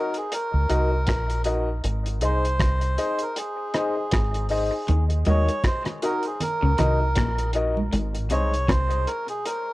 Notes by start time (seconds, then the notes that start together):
Already playing: D#4 F#4 A#4 D#5
0.14 G#4, closed hi-hat
0.32 A#4, closed hi-hat
0.54 C#2
0.69 C2 D#4 F#4 A#4 D#5, closed hi-hat
0.92 A#4 D#5
1.07 A#1, kick, cross-stick, closed hi-hat
1.30 closed hi-hat
1.44 D#4 F#4 A#4 D#5, closed hi-hat
1.84 G#1, closed hi-hat
2.06 closed hi-hat
2.21 C2 D#4 G#4 C5 D#5, closed hi-hat
2.45 closed hi-hat
2.59 C2, kick, cross-stick, closed hi-hat
2.81 closed hi-hat
2.98 D#4 G#4 C5 D#5, closed hi-hat
3.19 A#4, closed hi-hat
3.36 G#4, closed hi-hat
3.74 D#4 G#4 C5 D#5, cross-stick, closed hi-hat
3.96 C5 D#5
4.11 G#1, kick, cross-stick, closed hi-hat
4.34 closed hi-hat
4.49 D#4 G#4 C5 D#5, open hi-hat
4.88 D#2 D#3, closed hi-hat, low conga
5.10 closed hi-hat
5.25 D#2 D#3 D#4 F#4 A#4 C#5 D#5, closed hi-hat, high conga
5.49 closed hi-hat
5.64 C5, kick, cross-stick, closed hi-hat
5.85 cross-stick, closed hi-hat
6.02 D#4 F#4 A#4 D#5, closed hi-hat
6.23 G#4, closed hi-hat
6.40 A#4, closed hi-hat, low conga
6.62 C#2 C#3
6.78 C2 C3 D#4 F#4 A#4 D#5, cross-stick, closed hi-hat, low conga
7.01 A#4 D#5
7.15 A#1 A#2, kick, cross-stick, closed hi-hat
7.38 closed hi-hat
7.53 D#4 F#4 A#4 D#5, closed hi-hat
7.77 high conga
7.93 G#1 G#2, closed hi-hat
8.15 closed hi-hat
8.30 C2 C3 D#4 G#4 C5 C#5 D#5, closed hi-hat
8.54 closed hi-hat
8.68 C2 C3 C5, kick, cross-stick, closed hi-hat
8.91 closed hi-hat
9.07 A#4, closed hi-hat
9.28 G#4, closed hi-hat
9.46 A#4, closed hi-hat